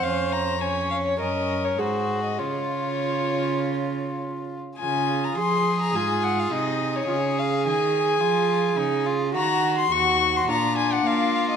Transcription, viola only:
X:1
M:4/4
L:1/8
Q:1/4=105
K:Db
V:1 name="Viola"
c2 d2 B2 A2 | F6- F z | F2 A2 F2 E2 | F A6- A |
G2 G2 =D4 |]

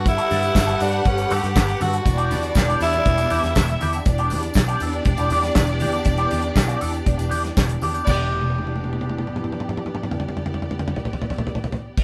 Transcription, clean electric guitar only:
X:1
M:4/4
L:1/16
Q:1/4=120
K:Em
V:1 name="Clean electric guitar"
z [B,FA] [B,FA] z2 [B,FA] [B,FB] z3 [B,FA] z3 [B,FA] [B,FA] | z [B,DG] [B,DG] z2 [B,DG] [B,DA] z3 [B,DG] z3 [B,DG] [B,DG] | z [B,DG] [B,DG] z2 [B,DG] [B,DA] z2 [B,DG] [B,DG] z3 [B,DG] [B,DG] | z [B,DG] [B,DG] z2 [B,DG] [B,DA] z3 [B,DG] z3 [B,DG] [B,DG] |
[B,DG]16- | [B,DG]16 |]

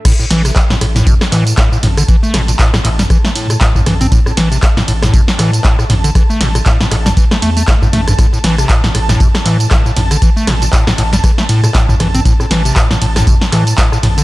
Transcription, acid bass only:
X:1
M:4/4
L:1/16
Q:"Swing 16ths" 1/4=118
K:Am
V:1 name="Acid bass" clef=bass
A,, A,, E, C, z A,, A,, A,, C, z E, z A,, A,, A,, D, | E, A, A,, _B,, A,, A,, A,, G, E, A, A,, B,, A,, A,, E, C | A,, A,, E, C, z A,, A,, A,, C, z E, z A,, A,, A,, D, | E, A, A,, _B,, A,, A,, A,, G, E, A, A, A, A,, A,, A, G,, |
A,, A,, E, C, A,, A,, A,, A,, C, z E, z A,, A,, A,, D, | E, A, A,, _B,, A,, A,, A,, G, E, A, A,, B,, A,, A,, E, C | A,, A,, E, C, A,, A,, A,, A,, C, z E, z A,, A,, A,, D, |]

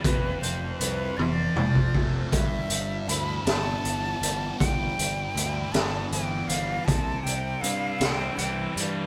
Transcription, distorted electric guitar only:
X:1
M:6/8
L:1/8
Q:3/8=53
K:Gmix
V:1 name="Distorted electric guitar" clef=bass
F,,2 F C F, A, | G,,2 E B, E, G, | G,,2 E B, E, G, | C,2 E C E, G, |]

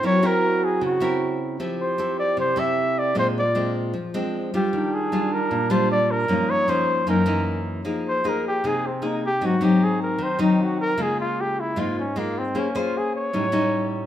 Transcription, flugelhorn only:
X:1
M:4/4
L:1/8
Q:1/4=153
K:Fm
V:1 name="Flugelhorn"
d B2 A _G3 z | z c2 =d c =e2 d | c =d2 z4 G- | G A2 B2 c =d B- |
B d c2 B3 z | z c B G A C E G | _G =G A B c E _G B | A F G =E F D B, C |
D F A d4- d |]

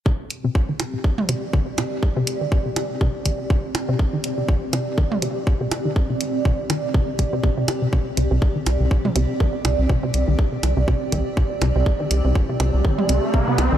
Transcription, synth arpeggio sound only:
X:1
M:4/4
L:1/16
Q:"Swing 16ths" 1/4=122
K:Cm
V:1 name="Synth arpeggio sound" clef=bass
C, z2 C, z E, z C, z2 C, z E, z C, z | z C, z E, z C, z2 C, z E, z C, z2 C, | z E, z C, z2 C, z E, z C, z2 C, z E, | z C, z2 C, z E, z C, z C, C, C, C, z C, |
C, z C, C, z E, z C, z C, C, z E, z C, z | C, C, z E, z C, z C, C, z E, z C, z C, C, | z E, z C, z C, C, z E, z C, z C, C, z E, |]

